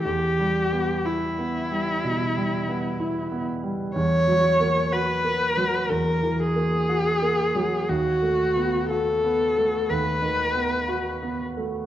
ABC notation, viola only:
X:1
M:4/4
L:1/8
Q:1/4=61
K:Bphr
V:1 name="Viola"
G2 E4- E z | ^c2 B2 ^A ^G3 | F2 A2 B3 z |]